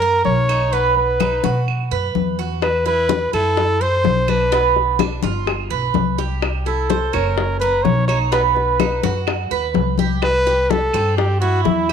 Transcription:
Already playing: F#2 A#4
0.01 A#4, high conga
0.25 B1 C#5, high conga
0.49 D#4, claves
0.72 B3 B4, high conga
0.96 B4, high conga
1.20 D#4, high conga, claves
1.44 B2 F#4, high conga
1.68 high conga, claves
1.91 F#2 B4, high conga
2.15 E2, high conga
2.39 F#4
2.62 B4, high bongo, high conga, claves
2.86 E4 B4, high bongo, high conga
3.09 B4, high bongo, high conga
3.33 F#2 E4 A4, high bongo, high conga, claves
3.57 high bongo, high conga
3.81 C5, high conga
4.04 B1, high bongo, low bongo, high conga
4.28 D4 B4, high bongo, high conga, claves
4.52 B3, high bongo
4.76 high bongo, high conga
4.99 D4, high bongo, high conga, claves
5.23 G1 F4, high bongo, high conga
5.47 high bongo, high conga, claves
5.70 B1 B4, high conga
5.94 C2, high bongo, low bongo, high conga
6.18 G4, high bongo
6.42 high bongo, high conga, claves
6.66 E4 A4, high bongo, high conga
6.90 C5, high bongo, high conga
7.13 F#1 C#4 A#4, high bongo, high conga, claves
7.37 high bongo, high conga
7.60 A#4 B4, high conga
7.84 B1 C#5, high bongo, low bongo, high conga
8.08 D#4 C#5, high bongo, claves
8.32 B3 B4, high bongo, high conga
8.55 B4, high bongo, high conga
8.80 D#4, high bongo, high conga, claves
9.03 F#2 F#4, high bongo, high conga
9.27 high bongo, high conga, claves
9.51 D#2 B4, high conga
9.74 C2, high bongo, low bongo, high conga
9.98 G4, high bongo, high conga
10.22 B4, high bongo, high conga, claves
10.46 G4, high bongo, high conga
10.70 A4, high bongo, high conga
10.94 G2 C4, high bongo, high conga, claves
11.17 G4, high bongo, high conga
11.40 E4 F#4, high conga
11.64 E2 E4, high bongo, low bongo, high conga
11.89 G4, high bongo, claves

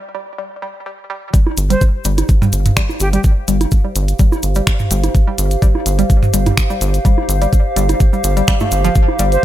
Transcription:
0.15 G3
0.38 G3
0.62 G3
0.86 G3
1.10 G3
1.33 G3 G4, kick, closed hi-hat, cabasa
1.47 C5, low bongo
1.57 G1, closed hi-hat, cabasa
1.70 G3 C5, closed hi-hat, cabasa
1.81 kick, closed hi-hat, cabasa
1.95 F5
2.05 G1 G3, closed hi-hat, cabasa
2.18 closed hi-hat, low bongo, cabasa
2.29 kick, closed hi-hat, cabasa
2.42 G3, mid tom, cabasa
2.53 G1, closed hi-hat, cabasa
2.66 closed hi-hat, mid tom, cabasa
2.77 G3, finger snap, kick, closed hi-hat, cabasa
2.89 low bongo, cabasa
3.00 G1 G4, closed hi-hat, cabasa
3.13 G3 G4, closed hi-hat, cabasa
3.24 kick, closed hi-hat, cabasa
3.48 G1 G3, closed hi-hat, cabasa
3.61 closed hi-hat, low bongo, cabasa
3.71 kick, closed hi-hat, cabasa
3.85 G3
3.96 G1, closed hi-hat, cabasa
4.08 closed hi-hat, cabasa
4.19 G3, kick, closed hi-hat, cabasa
4.32 low bongo, cabasa
4.43 G1, closed hi-hat, cabasa
4.55 G3, closed hi-hat, cabasa
4.67 finger snap, kick, closed hi-hat, cabasa
4.79 mid tom, cabasa
4.91 G1 G3, closed hi-hat, cabasa
5.04 closed hi-hat, low bongo, cabasa
5.15 kick, closed hi-hat, cabasa
5.27 G3
5.38 G1, closed hi-hat, cabasa
5.51 closed hi-hat, cabasa
5.62 G3, kick, closed hi-hat, cabasa
5.75 low bongo
5.86 G1, closed hi-hat, cabasa
5.99 G3, closed hi-hat, cabasa
6.10 kick, closed hi-hat, cabasa
6.23 mid tom, cabasa
6.34 G1 G3, closed hi-hat, cabasa
6.46 closed hi-hat, mid tom, low bongo, cabasa
6.57 finger snap, kick, closed hi-hat, cabasa
6.70 G3, cabasa
6.81 G1, closed hi-hat, cabasa
6.94 closed hi-hat, cabasa
7.05 G3, kick, closed hi-hat, cabasa
7.18 low bongo
7.29 G1, closed hi-hat, cabasa
7.42 G3, closed hi-hat, cabasa
7.53 kick, closed hi-hat, cabasa
7.76 G1 G3, closed hi-hat, cabasa
7.89 closed hi-hat, low bongo, cabasa
8.00 kick, closed hi-hat, cabasa
8.13 G3, cabasa
8.24 G1, closed hi-hat, cabasa
8.37 G3, closed hi-hat, cabasa
8.48 G3, finger snap, kick, closed hi-hat, cabasa
8.60 A3, mid tom, low bongo, cabasa
8.72 G1, closed hi-hat, cabasa
8.84 F3, closed hi-hat, cabasa
8.95 kick, closed hi-hat, cabasa
9.08 low bongo
9.19 G1 G3, closed hi-hat, cabasa
9.32 C5, closed hi-hat, cabasa

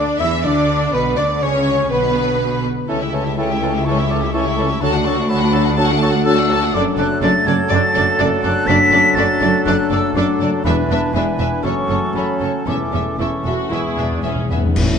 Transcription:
Already playing: D3 A3 D4 F#4 A4 D5 D6
0.18 E2 E3 D4 E4 E5 E6
0.42 D2 D3 D4 A4 D5 D6
0.93 B1 B2 D3 B3 B4 B5
1.16 D2 D3 B3 D4 D5 D6
1.40 C#2 C#3 C#4 G4 C#5 C#6
1.67 B4
1.89 B1 B2 D3 B3 B4 B5
1.93 B4
2.16 B3
2.40 G4
2.64 B4
2.87 C#2 C#3 E3 A3 C#4 E4 A4 C#5
2.99 E4 G4 E5
3.11 E3 A3 C#4 E4 A4 C#5 A5
3.24 E4 G4 E5
3.37 E3 A3 C#4 E4 A4 C#5 G5
3.48 E4 G4 E5
3.61 E3 C#4 E4 A4 C#5
3.74 E4 G4 E5
3.85 C#3 A3 C#4 E4 A4 C#5 C#6
3.89 E3
3.97 E4 G4 E5
4.09 E3 A3 C#4 E4 A4 C#5 D6
4.21 E4 G4 E5
4.33 E3 A3 C#4 E4 A4 C#5 C#6
4.45 E4 G4 E5
4.56 E3 C#4 E4 A4 C#5
4.68 E4 G4 E5
4.80 D2 D3 F#3 A3 D4 F#4 A4 A5
4.92 D4 F#4 F#5
5.04 F#3 D4 F#4 A4 A5 C#6
5.16 D4 F#4 F#5
5.28 F#3 D4 F#4 A4 A5 B5
5.38 F#4 F#5
5.43 D4
5.51 F#3 D4 A4 D5 A5
5.55 F#4
5.63 F#4 F#5
5.67 D4
5.75 F#3 A3 F#4 A4 A5
5.79 D4 F#4 A5
5.87 F#4 F#5
5.91 D4
5.98 D4 A4 A5
6.02 F#3 D4 F#4 A4 C#6
6.11 D4 F#4 F#5
6.23 F#3 D4 F#4 A4 A5 E6
6.37 D4 F#4 F#5
6.48 F#3 D4 F#4 A4 D5 A5
6.61 D4 F#4 F#5
6.73 F#1 F#2 F#3 A3 D4 A4 D5 D6
6.97 F#1 F#2 A3 D4 A4 D5 F#6
7.21 F#1 F#2 A3 D4 F#4 A4 D5 A6
7.46 F#1 F#2 D4 A4 D5 G#6
7.69 F#1 F#2 A3 D4 A4 D5 A6
7.94 F#1 F#2 A3 D4 A4 D5
8.19 F#1 F#2 D4 F#4 A4 D5
8.43 F#1 F#2 D4 A4 D5 F#6
8.67 F#1 F#2 A3 D4 A4 D5 B6
8.91 F#1 F#2 A3 D4 A4 D5
9.15 F#1 F#2 A3 D4 F#4 A4 D5 A6
9.41 F#1 F#2 D4 A4 D5
9.66 F#1 F#2 F#3 A3 D4 A4 D5 F#6
9.90 F#1 F#2 A3 D4 A4 D5 E6
10.14 F#1 F#2 A3 D4 F#4 A4 D5 D6
10.40 F#1 F#2 D4 A4 D5
10.64 E1 E2 E3 B3 D4 B4 E5
10.90 E1 E2 G#3 D4 B4 E5 A5
11.13 E1 E2 E3 B3 D4 B4 E5 G#5
11.17 D4
11.39 E1 E2 D4 G#4 B4 E5
11.64 F#1 F#2 F#3 A3 C#4 A4 C#5 C#6
11.89 F#1 F#2 A3 C#4 A4 C#5
12.14 F#1 F#2 C#4 A4 C#5 B5
12.40 F#1 F#2 C#4 A4 C#5 A5
12.66 E1 E2 E3 A3 C#4 A4 D6
12.70 E5
12.92 E1 E2 A3 C#4 A4 E5
13.18 E1 E2 E3 A3 C#4 E4 A4 E5 C#6
13.45 E1 E2 E4 F#4 A4 E5
13.71 E1 E2 E3 G#3 B3 E4 G#4 E5
13.80 E2
13.87 E2
13.96 E1 E2 B3 D4 G#4 E5
14.03 E2
14.12 E2
14.20 E2 E5
14.24 E1 E2 C#4 G#4
14.35 E2
14.43 E2
14.50 E1 E2 B3 G#4 B4 E5
14.58 E2
14.66 E2
14.76 A1 A2 C#4 E4, concert bass drum, crash
14.93 E4

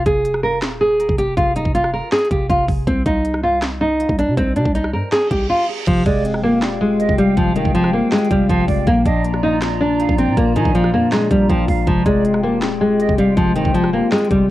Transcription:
0.06 F1 G#4, kick, closed hi-hat
0.25 closed hi-hat
0.34 cross-stick
0.43 A#4
0.62 D#1, finger snap, snare, closed hi-hat
0.81 G#4
1.00 closed hi-hat
1.09 F1, kick
1.18 G4, closed hi-hat
1.37 F1 F4, kick, closed hi-hat
1.56 D#4, closed hi-hat
1.65 F1, kick
1.75 F4, closed hi-hat
1.84 cross-stick
1.93 A#4
2.12 G#4, finger snap, snare, closed hi-hat
2.18 closed hi-hat
2.25 closed hi-hat
2.31 F1 G4, kick, closed hi-hat
2.50 F1 F4, kick, closed hi-hat
2.68 F1, kick, open hi-hat
2.87 C2 C4, kick, closed hi-hat
3.06 C2 D#4, kick, closed hi-hat
3.25 closed hi-hat
3.34 cross-stick
3.43 F4
3.62 finger snap, snare, closed hi-hat
3.81 D#4
4.00 closed hi-hat
4.09 C2, kick
4.18 D4, closed hi-hat
4.28 C3
4.37 C2 C4, kick, closed hi-hat
4.56 C3 D4, closed hi-hat
4.65 C2, kick
4.75 D#4, closed hi-hat
4.84 cross-stick
4.93 G2 A#4
5.12 G#4, finger snap, snare, closed hi-hat, reverse cymbal
5.31 C2 G4, kick, closed hi-hat
5.50 F4
5.87 F1 F3 G4 F5 G5, kick, closed hi-hat, crash
6.06 F1 G#3 D5, kick, closed hi-hat
6.24 C4, closed hi-hat
6.34 cross-stick
6.43 A#3 F4
6.62 D#1 G4, finger snap, snare, closed hi-hat
6.81 G#3 F4
7.00 D#5, closed hi-hat
7.09 F1, kick
7.18 G3 G#3 F5, closed hi-hat
7.37 F1 F3 G3, kick, closed hi-hat
7.56 D#3 G#3 G5, closed hi-hat
7.65 F1, kick
7.75 F3 C4, closed hi-hat
7.84 cross-stick
7.93 A#3 F4
8.12 G#3 G4, finger snap, snare, closed hi-hat
8.18 closed hi-hat
8.25 closed hi-hat
8.31 F1 G3 F4, kick, closed hi-hat
8.49 F1 F3 F5, kick, closed hi-hat
8.68 F1 G#3 D5, kick, open hi-hat
8.87 A#1 A#2 A#3 F4 D5 A#5, kick, closed hi-hat
9.05 A#1 F3 D4 D#5, kick, closed hi-hat
9.25 A#3, closed hi-hat
9.34 cross-stick
9.43 D4 D#4
9.62 F4, finger snap, snare, closed hi-hat
9.81 D4
10.00 F5, closed hi-hat
10.09 A#1, kick
10.18 F3 C4 G5, closed hi-hat
10.28 A#2
10.37 A#1 A#2 A#3, kick, closed hi-hat
10.56 A#2 D#3 F3 G#5, closed hi-hat
10.65 A#1, kick
10.74 F3 A#3, closed hi-hat
10.84 cross-stick
10.93 F2 A#3 D4
11.12 G#3 F4, finger snap, snare, closed hi-hat
11.31 A#1 G3 D4, kick, closed hi-hat
11.50 A#1 F3 G5, kick, closed hi-hat
11.68 A#1 F3 F5, kick, open hi-hat
11.87 F1 F3 G#3 G5, kick, closed hi-hat
12.06 F1 G#3 C4 D5, kick, closed hi-hat
12.24 F4, closed hi-hat
12.34 cross-stick
12.43 A#3 G4
12.62 D#1 G#4, finger snap, snare, closed hi-hat
12.81 G#3 G4
13.00 D#5, closed hi-hat
13.09 F1, kick
13.18 G3 C4 F5, closed hi-hat
13.37 F1 F3 G#3, kick, closed hi-hat
13.56 D#3 C4 G5, closed hi-hat
13.65 F1, kick
13.75 F3 F4, closed hi-hat
13.84 cross-stick
13.93 A#3 G4
14.12 G#3 G#4, finger snap, snare, closed hi-hat
14.18 closed hi-hat
14.25 closed hi-hat
14.31 F1 G3 G4, kick, closed hi-hat

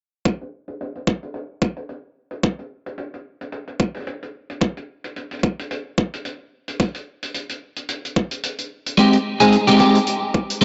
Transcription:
0.25 kick
0.41 closed hi-hat
0.68 closed hi-hat
0.81 closed hi-hat
0.95 closed hi-hat
1.07 kick
1.23 closed hi-hat
1.34 closed hi-hat
1.62 kick
1.76 closed hi-hat
1.89 closed hi-hat
2.31 closed hi-hat
2.43 kick, closed hi-hat
2.59 closed hi-hat
2.86 closed hi-hat
2.98 closed hi-hat
3.14 closed hi-hat
3.41 closed hi-hat
3.52 closed hi-hat
3.67 closed hi-hat
3.80 kick
3.94 closed hi-hat
3.96 closed hi-hat
4.00 closed hi-hat
4.02 closed hi-hat
4.04 closed hi-hat
4.07 closed hi-hat
4.22 closed hi-hat
4.50 closed hi-hat
4.60 kick, closed hi-hat
4.77 closed hi-hat
5.04 closed hi-hat
5.16 closed hi-hat
5.31 closed hi-hat
5.34 closed hi-hat
5.39 closed hi-hat
5.43 kick
5.59 closed hi-hat
5.71 closed hi-hat
5.98 kick
6.14 closed hi-hat
6.25 closed hi-hat
6.68 closed hi-hat
6.80 kick, closed hi-hat
6.94 closed hi-hat
7.23 closed hi-hat
7.34 closed hi-hat
7.49 closed hi-hat
7.76 closed hi-hat
7.89 closed hi-hat
8.05 closed hi-hat
8.16 kick
8.31 closed hi-hat
8.43 closed hi-hat
8.58 closed hi-hat
8.86 closed hi-hat
8.98 G#3 C4 D#4 G4, kick, closed hi-hat
9.13 closed hi-hat
9.40 G#3 C4 D#4 G#4, closed hi-hat
9.52 closed hi-hat
9.67 G#3 C4 D#4 G4, closed hi-hat
9.79 G#3 C4 D#4 G4, kick
9.95 closed hi-hat
10.07 closed hi-hat
10.34 kick
10.50 closed hi-hat
10.61 G#3, closed hi-hat

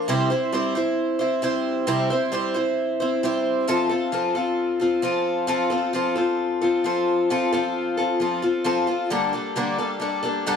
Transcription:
0.08 C3 G3 C4 E4 C5
0.30 C4 E4 C5
0.52 G3 C4 E4 C5
0.75 C4 E4 C5
1.19 C4 E4 C5
1.42 G3 C4 E4 C5
1.87 C3 G3 C4 E4 C5
2.10 C4 E4 C5
2.32 G3 C4 E4 C5
2.54 C4 E4 C5
3.00 C4 E4 C5
3.23 G3 C4 E4 C5
3.68 F3 C4 F4 A4
3.89 C4 F4 A4
4.12 F3 C4 F4 A4
4.35 C4 F4 A4
4.80 C4 F4 A4
5.02 F3 C4 F4 A4
5.47 F3 C4 F4 A4
5.70 C4 F4 A4
5.93 F3 C4 F4 A4
6.16 C4 F4 A4
6.61 C4 F4 A4
6.84 F3 C4 F4 A4
7.30 F3 C4 F4 A4
7.53 F3 C4 F4 A4
7.97 C4 F4 A4
8.20 F3 C4 F4 A4
8.42 C4 F4 A4
8.64 F3 C4 F4 A4
8.87 C4 F4 A4
9.10 G2 D3 G3 A#3 D4 A4
9.33 G3 A#3 D4 A4
9.56 G2 D3 G3 A#3 D4 A4
9.78 G3 A#3 D4 A4
10.00 G3 A#3 D4 A4
10.23 G3 A#3 D4 A4
10.46 G2 D3 G3 A#3 D4 A4

